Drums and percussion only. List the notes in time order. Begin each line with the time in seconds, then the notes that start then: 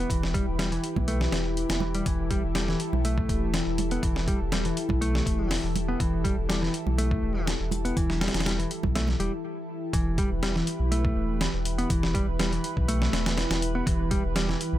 0.10 kick, closed hi-hat
0.23 snare
0.34 kick, closed hi-hat
0.59 snare, closed hi-hat
0.72 closed hi-hat
0.84 closed hi-hat
0.96 kick, high conga, low conga
1.08 closed hi-hat
1.21 snare
1.32 snare, closed hi-hat
1.57 closed hi-hat
1.69 snare, closed hi-hat, high conga
1.80 low conga
1.95 closed hi-hat
2.06 kick, closed hi-hat
2.31 kick, closed hi-hat
2.55 snare, closed hi-hat
2.68 snare
2.80 closed hi-hat
2.93 low conga
3.05 closed hi-hat
3.18 kick
3.29 kick, closed hi-hat
3.54 snare, closed hi-hat
3.78 closed hi-hat, low conga
3.91 closed hi-hat
4.03 kick, closed hi-hat
4.16 snare
4.28 kick, closed hi-hat
4.52 snare, closed hi-hat
4.65 closed hi-hat
4.77 closed hi-hat
4.89 kick, low conga
5.02 closed hi-hat
5.15 snare
5.26 kick, closed hi-hat
5.51 snare, open hi-hat
5.76 closed hi-hat, low conga
6.00 kick, closed hi-hat
6.25 kick, closed hi-hat
6.50 snare, closed hi-hat
6.63 snare
6.74 closed hi-hat
6.87 low conga
6.98 closed hi-hat
7.11 kick
7.47 snare, closed hi-hat
7.71 closed hi-hat, low conga
7.85 closed hi-hat
7.97 kick, closed hi-hat
8.10 snare
8.21 snare, closed hi-hat
8.28 snare, closed hi-hat
8.34 snare, closed hi-hat
8.40 snare, closed hi-hat
8.46 snare, closed hi-hat
8.60 closed hi-hat
8.71 closed hi-hat
8.83 kick, low conga
8.95 snare, closed hi-hat
9.08 snare, low conga
9.20 closed hi-hat
9.93 kick, closed hi-hat
10.18 kick, closed hi-hat
10.43 snare, closed hi-hat
10.56 snare
10.67 closed hi-hat
10.92 closed hi-hat
11.05 kick
11.41 snare, closed hi-hat
11.65 closed hi-hat
11.79 closed hi-hat
11.90 kick, closed hi-hat
12.03 snare
12.15 kick, closed hi-hat
12.40 snare, closed hi-hat
12.53 closed hi-hat
12.64 closed hi-hat
12.77 kick
12.89 closed hi-hat
13.02 snare
13.13 snare, closed hi-hat
13.26 snare, closed hi-hat
13.37 snare, closed hi-hat
13.51 snare, closed hi-hat
13.62 closed hi-hat
13.87 kick, closed hi-hat
14.11 kick, closed hi-hat
14.36 snare, closed hi-hat
14.49 snare
14.61 closed hi-hat